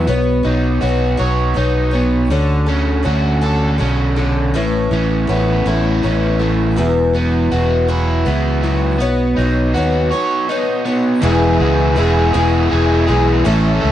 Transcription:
Already playing: F#4
0.07 B1 B3 D#4 F#4 C#5
0.43 B1 D#4 F#4 C#5
0.81 B1 B3 D#4 F#4 C#5
1.17 B1 B3 D#4 F#4 C#5
1.54 B1 B3 D#4 F#4 C#5
1.91 B3 D#4 F#4 C#5
2.30 D2 D3 C#4 F#4 A4
2.66 C#4 F#4 A4
3.03 D2 D3 C#4 F#4 A4
3.41 D3 C#4 F#4 A4
3.78 B1 D3 C#4 F#4 A4
4.16 D3 C#4 F#4 A4
4.54 A1 A2 A3 B3 C#4 E4
4.91 A1 B3 C#4 E4
5.27 A1 A3 B3 C#4 E4
5.66 A1 A2 A3 B3 C#4 E4
6.03 A1 A3 B3 C#4 E4
6.39 A3 B3 C#4 E4
6.76 E1 E2 E3 F#3 B3 E4 F#4
7.14 F#3 B3 E4 F#4
7.51 E1 F#3 B3 E4 F#4
7.88 E2 E3 F#3 B3 E4 F#4
8.25 C#2 F#3 B3 E4 F#4
8.63 F#3 B3 E4 F#4
9.00 B1 B3 D#4 F#4 C#5
9.36 B1 D#4 F#4 C#5
9.41 D#4
9.74 D#2 B3 D#4 F#4 C#5
10.12 B3 D#4 F#4 C#5
10.49 B3 D#4 F#4 C#5
10.85 B3 D#4 F#4 C#5
11.22 E1 E2 B2 E3 G#3 B3 E4 G#4 E5 B5 E6
11.59 C#2 E3 G#3 B3 G#4
11.96 E1 E3 G#3 B3 E4 G#4
12.34 E1 E2 E3 G#3 B3 E4 G#4
12.70 E1 E3 G#3 B3 G#4
13.08 B1 E3 G#3 B3 E4 G#4
13.45 A1 A2 E3 A3 C#4 E4 A4 E5 C#6
13.81 C#2 A3 C#4 A4

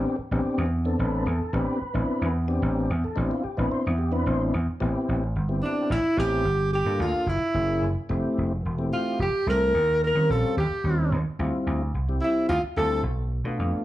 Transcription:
Already playing: B3 C4 D4 G4
0.19 muted slap bass stroke
0.31 A1 B3 C4 D4 G4
0.45 muted slap bass stroke
0.58 E2
0.85 B3 C4 D4 A4
0.99 A1 B4
1.26 E2 A4
1.41 muted slap bass stroke
1.53 A1 B3 C4 D4 G4 B4
1.81 muted slap bass stroke
1.94 A1 B3 C4 D4 E4
2.09 muted slap bass stroke
2.22 E2
2.48 B3 C4 D4 G4
2.62 A1
2.90 E2
3.04 A4, muted slap bass stroke
3.16 A1 B3 C4 D4 E4 G4
3.31 F4
3.44 G4, muted slap bass stroke
3.57 A1 B3 C4 D4 E4 B4
3.72 C5
3.86 E2 E4
3.98 G4
4.12 B3 C4 D4 E4 B4
4.26 A1 C5
4.54 E2
4.67 muted slap bass stroke
4.80 A1 B3 C4 E4 G4
5.09 A1
5.36 G1
5.49 B3 C4 E4 G4
5.62 D4
5.90 A1 E4
6.17 A1 B3 C4 E4 G4
6.44 G1
6.73 G4
6.86 G2 A#3 D4 F4 A4
6.99 D2 F4
7.13 muted slap bass stroke
7.26 F#1 E4
7.41 muted slap bass stroke
7.54 F#1 A#3 C#4 E4 G#4
7.82 F#1
8.09 F1 A3 C4 E4 G4
8.38 F1
8.65 E1
8.79 A3 C4 E4 G4
8.93 F4
9.19 F1 G4
9.47 C2 A3 C4 E4 A4 A#4
9.74 D#2
10.04 A#4
10.15 D#3 G3 C4 C#4 F4
10.30 A#1 A4
10.44 muted slap bass stroke
10.57 D#2 G4
10.71 muted slap bass stroke
10.84 D#2 G3 C4 C#4 D#4
11.12 D#2
11.39 D2 G3 C4 E4 F4
11.67 D2
11.94 C2
12.09 G3 C4 E4 G4
12.21 E4
12.49 D2 F4
12.63 muted slap bass stroke
12.77 D2 G3 C4 E4 F4 A4
13.03 B1
13.44 B2 A3 B3 D4 F4
13.59 F2
13.73 muted slap bass stroke

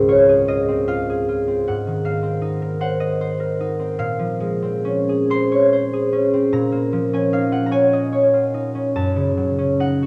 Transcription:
Already playing: C#2 G#2 G#3 C4 C5
0.08 F4 C#5
0.29 G#4
0.48 F4 D#5
0.68 C4
0.88 F4 F5
1.10 G#4
1.28 F4
1.48 C4
1.68 G#2 F#5
1.87 D#3
2.05 A#3 F5
2.23 C4
2.42 D#4
2.62 A#4
2.81 C5 F#5
3.00 D#5
3.21 C5
3.40 A#4
3.60 D#4
3.80 C4
3.99 A#2 F5
4.19 F3
4.40 G#3
4.62 C4
4.85 C#4
5.09 G#4
5.30 C5 C6
5.52 C#5
5.73 C5
5.93 G#4
6.13 C#4
6.33 C4
6.52 A#2 A#5
6.72 A#3
6.93 F3
7.13 C#4 G#5
7.32 D#4 F5
7.52 F4 F#5
7.66 A#5
7.71 C#5 G#5
7.93 D#5
8.13 C#5
8.34 F4
8.54 D#4
8.75 C#4
8.96 F#2 A5
9.16 C#3
9.37 F#3
9.58 C#4
9.80 D#4 F#5
10.03 F#4

